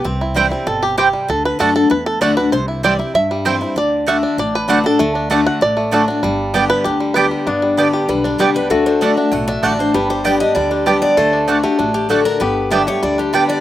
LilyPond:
<<
  \new Staff \with { instrumentName = "Steel-string acoustic guitar" } { \time 4/4 \key g \major \tempo 4 = 194 r1 | r1 | r1 | r1 |
r1 | r1 | r2 b'8 d'8 g'8 b'8 | a'8 c''8 d''8 e''8 fis''8 e''8 d''8 c''8 |
b'8 c''8 d''8 ees''8 d''8 g'8 b'8 d''8 | c''4. g'8 fis'8 g'8 a'8 bes'8 | b'4 e''8 cis''8 d''8 g'8 b'8 d''8 | }
  \new Staff \with { instrumentName = "Mandolin" } { \time 4/4 \key g \major r4 <c' e' c'' g''>8 r4. <c' e' c'' g''>8 r8 | r4 <a fis' d'' fis''>8 r4. <a fis' d'' fis''>8 r8 | r4 <c' e' c'' g''>8 r4. <c' e' c'' g''>8 r8 | r4 <a fis' d'' fis''>8 r4. <a fis' d'' fis''>8 r8 |
r4 <a fis' d'' fis''>8 r4. <a fis' d'' fis''>8 r8 | r4 <b g' d'' g''>8 r4. <b g' d'' g''>8 r8 | r4 <b g' d'' g''>8 r4. <b g' d'' g''>8 r8 | r4 <a fis' d'' fis''>8 r4. <a fis' d'' fis''>8 r8 |
r4 <b g' d'' g''>8 r4. <b g' d'' g''>8 r8 | r4 <a fis' d'' fis''>8 r4. <a fis' d'' fis''>8 r8 | r4 <b g' d'' g''>8 r4. <b g' d'' g''>8 r8 | }
  \new Staff \with { instrumentName = "Resonator guitar played with a steel bar" } { \time 4/4 \key g \major r1 | r1 | r1 | r1 |
r1 | r1 | d'1 | fis'1 |
g'1 | a'2.~ a'8 r8 | g'1 | }
  \new Staff \with { instrumentName = "Five-string banjo" } { \time 4/4 \key g \major << { b'4. r8 a'8 g'8 g'4 | a'8 b'8 a'8 a'8 b'8 a'8 d''8 b'8 | c''4 d''8 r8 e''4 c''4 | d''4 e''4 d''8 b'4 a'8~ |
a'4 r8 fis''8 d''4 a'4 | r4. b'8 g'4 b'4 | r1 | r1 |
r1 | r1 | r1 | } \\ { c'8 e'8 g8 c'4. r8 g8 | r1 | r8 e'4 e'4 g4 e'8 | r4. d'4. d'4 |
a8 d'8 a4. a4 d'8 | g4 b4. g4 g8 | b8 g8 b8 g'8 g8 d'8 g8 d'8 | a8 d'8 d'8 d'8 a8 d'8 d'8 d'8 |
g8 g'8 b8 d'8 g8 d'8 g'8 b8 | a8 d'8 d'8 a8 d'8 d'8 d'8 d'8 | b4 b8 g'8 g8 d'8 g8 d'8 | } >> }
  \new Staff \with { instrumentName = "Steel-string acoustic guitar" } { \time 4/4 \key g \major << { r4 <e g c' e'>8 <c' e'>8 r2 | r4 <d a d' fis'>8 <d' fis'>8 r4 <d a d' fis'>8 <d' fis'>8 | r4 <e g c' e'>8 <c' e'>8 r4 <e g c' e'>8 <c' e'>8 | r4 <d a d' fis'>4 r4 <d a d' fis'>8 <d' fis'>8 |
r4 <d a d' fis'>4 r4 <d a d' fis'>8 <d' fis'>8 | r4 <d g b g'>4 r4 <d g b g'>4 | r4 <d g b g'>4 r4 <d g b g'>8 <b g'>8 | r4 <d a d' fis'>8 <d' fis'>8 r4 <d a d' fis'>8 <d' fis'>8 |
r4 <d g b g'>8 <b g'>8 r4 <d g b g'>4 | r4 <d a d' fis'>8 <d' fis'>8 r4 <d a d' fis'>4 | r4 <d g b g'>8 <b g'>8 r4 <d g b g'>4 | } \\ { c2 b,4 c4 | d2 a,2 | c2 g,2 | d2 a,2 |
d2 a,2 | g,2 d2 | g,2 d2 | d2 a,2 |
g,2 d2 | d2 a,2 | g,2 d2 | } >> }
  \new Staff \with { instrumentName = "Upright bass" } { \clef bass \time 4/4 \key g \major c,2 g,,2 | d,4 fis,4 e,4 d,4 | c,2 g,2 | d,2 a,,2 |
d,2 a,,2 | g,,2 d,2 | g,,2 b,,4 c,4 | d,2 b,,4 a,,4 |
g,,2 d,2 | d,2 a,,2 | g,,2 d,2 | }
>>